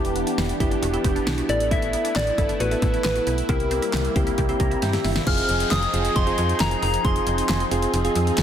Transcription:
Already playing: E1 E3 B3 D4 E4 G4
0.05 closed hi-hat
0.16 B3, closed hi-hat
0.27 D4, closed hi-hat
0.38 E1 E4, snare, closed hi-hat
0.49 closed hi-hat
0.60 F#1 B3 E4 G4, kick, closed hi-hat
0.71 D4, closed hi-hat
0.82 E1 F#4, closed hi-hat
0.93 B3 E4 G4, closed hi-hat
1.04 E1 G4, kick, closed hi-hat
1.15 D4, closed hi-hat
1.26 B1 D4, snare, closed hi-hat
1.38 F#4, closed hi-hat
1.49 A1 A3 B3 E4 A4 D5, closed hi-hat
1.60 closed hi-hat
1.71 E4 E5, kick, closed hi-hat
1.82 closed hi-hat
1.93 B3, closed hi-hat
2.05 D4, closed hi-hat
2.16 A1 E4 D5, snare, clap, closed hi-hat
2.27 closed hi-hat
2.38 G1 B3 E4 A4, kick, closed hi-hat
2.49 D4, closed hi-hat
2.60 A1 F#4 B4, closed hi-hat
2.71 B3 E4 A4, closed hi-hat
2.82 A1 A4, kick, closed hi-hat
2.93 E4, closed hi-hat
3.04 A1 E4 B4, snare, clap, closed hi-hat
3.15 F#4, closed hi-hat
3.27 B1 E4, closed hi-hat
3.38 closed hi-hat
3.49 C2 C3 G3 A#3 C4 E4 G4 A#4, kick, closed hi-hat
3.60 closed hi-hat
3.71 C4, closed hi-hat
3.82 E4, closed hi-hat
3.93 C2 G4, snare, clap, closed hi-hat
4.05 closed hi-hat
4.16 C#2 C4 E4 G4, kick, closed hi-hat
4.27 E4, closed hi-hat
4.38 C2 G4, kick, closed hi-hat
4.49 C4 E4 G4, closed hi-hat
4.60 C2 G4 A#5, kick, closed hi-hat
4.71 E4, closed hi-hat
4.82 G2 E4 G5, snare, closed hi-hat
4.93 G4 E5, snare, closed hi-hat
5.04 G1 E4, snare, open hi-hat
5.16 snare, closed hi-hat
5.27 F1 F3 C4 D#4 F4 G#4 F6, kick, closed hi-hat, crash, downlifter
5.38 closed hi-hat
5.49 F1, closed hi-hat
5.60 closed hi-hat
5.71 F1 D#6, snare, clap, closed hi-hat
5.82 closed hi-hat
5.93 F1 C4 F4 G#4, closed hi-hat
6.05 closed hi-hat
6.16 F1 C6, kick, closed hi-hat
6.27 C4 F4 G#4, closed hi-hat
6.38 F2, closed hi-hat
6.49 closed hi-hat
6.60 F1 A#5, snare, clap, closed hi-hat
6.71 closed hi-hat
6.83 F1 A#5, open hi-hat
6.94 closed hi-hat
7.05 F1 C4 F4 G#4 C6, kick, closed hi-hat
7.16 closed hi-hat
7.27 F1, closed hi-hat
7.38 closed hi-hat
7.49 F1, snare, clap, closed hi-hat
7.60 closed hi-hat
7.71 F1 C4 F4 G#4, closed hi-hat
7.82 closed hi-hat
7.94 F1, closed hi-hat
8.05 C4 F4 G#4, closed hi-hat
8.16 F2, closed hi-hat
8.27 closed hi-hat
8.38 F1, snare, clap, closed hi-hat

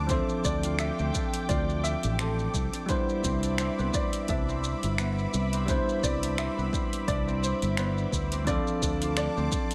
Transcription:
Already playing: D2 D4 F4 D6
0.07 F3 C4 D4 C5 G5, kick, closed hi-hat, shaker
0.11 A4 E5
0.29 shaker
0.44 D2 D4 D5, kick, shaker
0.63 F4, closed hi-hat, shaker
0.79 D4 E5, finger snap, closed hi-hat, shaker
0.99 D2 C4, shaker
1.14 D4, kick, shaker
1.34 closed hi-hat, shaker
1.49 D2 F4 D5, kick, closed hi-hat, shaker
1.69 D4, shaker
1.84 E5, shaker
2.03 A1, closed hi-hat, shaker
2.19 C4 A4, finger snap, closed hi-hat, shaker
2.39 shaker
2.54 C2, kick, shaker
2.73 D4, closed hi-hat, shaker
2.86 G3 B3 D4 C5 E5 B5, kick, closed hi-hat, shaker
2.90 E4 C5
3.09 shaker
3.24 C2 C4, kick, shaker
3.43 D4, closed hi-hat, shaker
3.58 C4, finger snap, closed hi-hat, shaker
3.79 C2 B3, shaker
3.94 C4 D5, kick, shaker
4.13 closed hi-hat, shaker
4.28 C2 D4 E5, kick, closed hi-hat, shaker
4.49 C4, shaker
4.64 shaker
4.83 G1, closed hi-hat, shaker
4.98 B3, finger snap, closed hi-hat, shaker
5.19 shaker
5.34 C2, shaker
5.53 C4, closed hi-hat, shaker
5.66 G3 B3 D4 C5, kick, closed hi-hat, shaker
5.70 E4 C5
5.89 shaker
6.03 C2 C4 D5, kick, shaker
6.23 D4, closed hi-hat, shaker
6.38 C4 E5, finger snap, closed hi-hat, shaker
6.58 C2 B3, shaker
6.73 C4, kick, shaker
6.93 closed hi-hat, shaker
7.08 C2 D4 D5, kick, closed hi-hat, shaker
7.27 C4, shaker
7.43 C5, shaker
7.62 G1, closed hi-hat, shaker
7.77 B3 C5, finger snap, closed hi-hat, shaker
7.98 shaker
8.12 D2, kick, shaker
8.32 C4, closed hi-hat, shaker
8.45 F3 C4 D4 D5 A5 D6, kick, closed hi-hat, shaker
8.49 A4 F5
8.67 shaker
8.82 D2 D4, kick, shaker
9.02 F4, closed hi-hat, shaker
9.17 D4 D5, finger snap, closed hi-hat, shaker
9.37 D2 C4, shaker
9.52 D4, kick, shaker
9.71 closed hi-hat, shaker

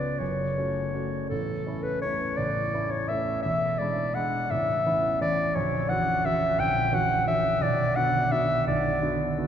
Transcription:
Already playing: C#1 C#2 B3 C#4 F4 D5
0.19 F#1 F#2 C#5
0.58 A3 C#4 F#4
0.95 A3 C#4 F#4
1.29 A0 A1 A4
1.67 A3 C#4 E4
1.83 B4
2.02 A3 C#4 E4 C#5
2.37 A0 A1 D5
2.74 A3 C#4 E4
2.91 C#5
3.09 A3 C#4 E4 E5
3.42 E1 E2 E5
3.78 G#3 D4 E4 D5
4.14 G#3 D4 E4 F#5
4.51 A0 A1 E5
4.86 E3 C#4 E4
5.21 E3 C#4 E4 D5
5.55 A#0 A#1 C#5
5.89 E3 C#4 F#4 F#5
6.25 E3 C#4 F#4 E5
6.58 A#0 A#1 G5
6.93 E3 C#4 F#4 F#5
7.27 E3 C#4 F#4 E5
7.61 B0 B1 D5
7.96 D3 B3 F#4 F#5
8.31 D3 B3 F#4 E5
8.67 B0 B1 D5
9.02 D3 B3 F#4
9.38 D3 B3 F#4

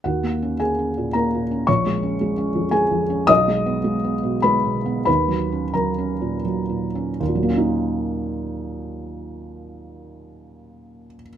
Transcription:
0.04 D#2 F#4 F#5
0.23 A#3
0.42 C#4
0.60 A#3 G#4 G#5
0.79 C#4
0.98 A#2
1.13 A#3 A#4 A#5
1.34 A#2
1.51 C#4
1.67 A#1 C#5 C#6
1.86 G#3
2.03 C#4
2.21 G#3
2.38 C#4
2.55 F2
2.71 G#3 G#4 G#5
2.91 F2
3.10 C#4
3.27 B1 D#5 D#6
3.48 G#3
3.66 B3
3.84 G#3
4.04 B3
4.23 B2
4.42 G#3 B4 B5
4.64 B2
4.86 B3
5.05 D#2 B4 B5
5.28 F#3
5.52 C#4
5.74 F#3 A#4 A#5
5.98 C#4
6.21 A#2
6.45 F#3
6.69 A#2
6.95 C#4
7.20 D#2
7.28 A#2
7.35 F#3
7.43 A#3
7.50 C#4
7.58 D#4

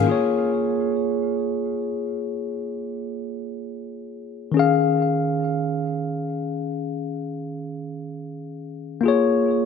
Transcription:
0.04 A#3 F4
0.09 G#4 C#5
4.52 D#3 C#4
4.57 G#4 F5
9.01 A#3 F4
9.06 G#4 C#5

